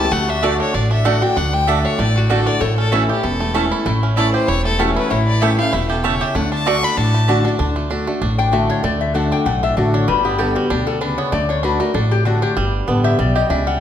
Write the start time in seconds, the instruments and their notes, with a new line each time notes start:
Already playing: steel-string acoustic guitar E3 A3 C#4 E4, five-string banjo A3 C#4 E4
0.00 fiddle A5
0.05 resonator guitar played with a steel bar G4
0.11 upright bass D2, steel-string acoustic guitar D3, five-string banjo A3, resonator guitar played with a steel bar F#4, fiddle F#5
0.29 five-string banjo D4, fiddle E5
0.43 steel-string acoustic guitar D3 A3 D4 F#4, mandolin A3 F#4 D5 A5, five-string banjo D4, fiddle D5
0.60 five-string banjo D4, fiddle C#5
0.74 upright bass A1, steel-string acoustic guitar A2, five-string banjo D4, fiddle D5
0.91 five-string banjo D4, fiddle E5
1.05 steel-string acoustic guitar D3 A3 D4 F#4, mandolin A3 F#4 D5 A5, five-string banjo A3, fiddle F#5
1.22 five-string banjo D4, steel-string acoustic guitar D4 F#4, fiddle G5
1.37 upright bass D2, steel-string acoustic guitar D3, five-string banjo D4, fiddle F#5
1.53 five-string banjo A3, fiddle G5
1.67 steel-string acoustic guitar D3 A3 D4 F#4, mandolin A3 F#4 D5 A5, five-string banjo D4, fiddle E5
1.84 five-string banjo D4, fiddle C#5
1.99 upright bass A1, steel-string acoustic guitar A2, five-string banjo A3, fiddle D5
2.16 five-string banjo D4, fiddle F#4
2.29 steel-string acoustic guitar D3 A3 D4 F#4, mandolin A3 F#4 D5 A5, five-string banjo D4, fiddle A4
2.46 five-string banjo D4, fiddle D5
2.60 upright bass A1, steel-string acoustic guitar A2, five-string banjo A3, resonator guitar played with a steel bar A4, fiddle C#5
2.77 five-string banjo C#4, fiddle A4
2.92 steel-string acoustic guitar E3 A3 C#4 E4, mandolin A3 E4 C#5 A5, five-string banjo E4, fiddle F#4
3.08 steel-string acoustic guitar C#4 E4, fiddle G4, five-string banjo G4
3.23 upright bass E1, steel-string acoustic guitar E2, five-string banjo E4, fiddle A4
3.40 five-string banjo A3
3.54 steel-string acoustic guitar E3 A3 C#4 E4, mandolin A3 E4 C#5 A5, five-string banjo C#4
3.72 five-string banjo E4
3.86 upright bass A1, steel-string acoustic guitar A2, five-string banjo A3, resonator guitar played with a steel bar E4
4.03 five-string banjo C#4
4.17 steel-string acoustic guitar E3 A3 C#4 E4, mandolin A3 E4 C#5 A5, five-string banjo E4, fiddle D5
4.34 five-string banjo G4, fiddle C5
4.48 upright bass E1, steel-string acoustic guitar E2, five-string banjo E4, fiddle C#5
4.65 five-string banjo A3, fiddle A4
4.79 steel-string acoustic guitar E3 A3 C#4 E4, mandolin A3 E4 C#5 A5, five-string banjo C#4, resonator guitar played with a steel bar F#4, fiddle G4
4.96 five-string banjo E4, fiddle B4
5.10 upright bass A1, steel-string acoustic guitar A2, five-string banjo E3, resonator guitar played with a steel bar E4, fiddle C#5
5.27 fiddle D5
5.41 steel-string acoustic guitar E3 A3 C#4 E4, mandolin A3 E4 C#5 A5, five-string banjo G4, fiddle E5
5.58 five-string banjo A3, steel-string acoustic guitar C#4 E4, fiddle F5
5.73 upright bass E1, steel-string acoustic guitar B2, five-string banjo E4, fiddle E5
5.90 five-string banjo G4, fiddle A4
6.04 steel-string acoustic guitar C#3, mandolin A3 E4 C#5 A5, five-string banjo C#4, fiddle C#5
6.21 five-string banjo G4, fiddle E5
6.35 upright bass D2, steel-string acoustic guitar D3, five-string banjo A3, resonator guitar played with a steel bar D4, fiddle F#5
6.52 five-string banjo D4, fiddle A5
6.66 steel-string acoustic guitar D3 A3 D4 F#4, mandolin A3 F#4 D5 A5, five-string banjo D4, fiddle C#6
6.83 five-string banjo D4, fiddle B5
6.97 upright bass A1, steel-string acoustic guitar A2, five-string banjo D4, fiddle A5
7.05 resonator guitar played with a steel bar C#4
7.14 five-string banjo A3
7.28 steel-string acoustic guitar D3 A3 D4 F#4, mandolin A3 F#4 D5 A5, five-string banjo D4
7.45 five-string banjo D4, steel-string acoustic guitar D4 F#4
7.59 upright bass D2, steel-string acoustic guitar D3, five-string banjo D4
7.76 five-string banjo A3
7.90 steel-string acoustic guitar D3 A3 D4 F#4, five-string banjo D4
8.07 five-string banjo A3, steel-string acoustic guitar D4 F#4
8.21 upright bass A1, steel-string acoustic guitar A2, five-string banjo D4
8.38 five-string banjo D4, resonator guitar played with a steel bar G5
8.52 steel-string acoustic guitar D3 A3 D4 F#4, five-string banjo A3, resonator guitar played with a steel bar E5
8.70 five-string banjo D4, resonator guitar played with a steel bar C#5
8.83 upright bass D2, steel-string acoustic guitar D3, five-string banjo A3, resonator guitar played with a steel bar D5
9.01 resonator guitar played with a steel bar E5
9.14 steel-string acoustic guitar D3 A3 D4 F#4, five-string banjo D4, resonator guitar played with a steel bar F#5
9.32 five-string banjo D4, resonator guitar played with a steel bar G5
9.46 upright bass B1, steel-string acoustic guitar A2, five-string banjo A3, resonator guitar played with a steel bar F#5
9.63 five-string banjo D4, resonator guitar played with a steel bar E5
9.77 upright bass A1, steel-string acoustic guitar D3 A3 D4 F#4, five-string banjo D4, resonator guitar played with a steel bar D5
9.94 five-string banjo D4, resonator guitar played with a steel bar C#5
10.08 upright bass G1, steel-string acoustic guitar G2, five-string banjo G3, resonator guitar played with a steel bar B4
10.24 five-string banjo B3, resonator guitar played with a steel bar G4
10.38 steel-string acoustic guitar D3 G3 B3 G4, five-string banjo G4, resonator guitar played with a steel bar A4
10.55 five-string banjo G3, resonator guitar played with a steel bar F#4
10.70 upright bass D2, steel-string acoustic guitar B2, five-string banjo D4, resonator guitar played with a steel bar G4
10.87 five-string banjo G3, resonator guitar played with a steel bar A4
11.01 steel-string acoustic guitar C#3, five-string banjo D4, resonator guitar played with a steel bar B4
11.18 five-string banjo B3, resonator guitar played with a steel bar C#5
11.32 upright bass D2, steel-string acoustic guitar D3, five-string banjo A3, resonator guitar played with a steel bar D5
11.49 five-string banjo D4, resonator guitar played with a steel bar C#5
11.63 steel-string acoustic guitar D3 A3 D4 F#4, five-string banjo D4, resonator guitar played with a steel bar B4
11.80 five-string banjo A3, steel-string acoustic guitar D4 F#4, resonator guitar played with a steel bar A#4
11.94 upright bass A1, steel-string acoustic guitar A2, five-string banjo D4, resonator guitar played with a steel bar A4
12.11 five-string banjo A3, resonator guitar played with a steel bar G4
12.25 steel-string acoustic guitar D3 A3 D4 F#4, five-string banjo D4, resonator guitar played with a steel bar F#4
12.42 five-string banjo D4, resonator guitar played with a steel bar G4
12.56 upright bass G1, steel-string acoustic guitar G2, five-string banjo G3
12.87 upright bass A1, steel-string acoustic guitar D3 G3 B3 G4, five-string banjo B3
13.04 five-string banjo G4, resonator guitar played with a steel bar E5
13.19 upright bass B1, steel-string acoustic guitar B2, five-string banjo G3, resonator guitar played with a steel bar D5
13.36 five-string banjo G4, resonator guitar played with a steel bar D#5
13.50 upright bass C#2, steel-string acoustic guitar C#3, five-string banjo D4, resonator guitar played with a steel bar E5
13.67 five-string banjo G3, resonator guitar played with a steel bar F#5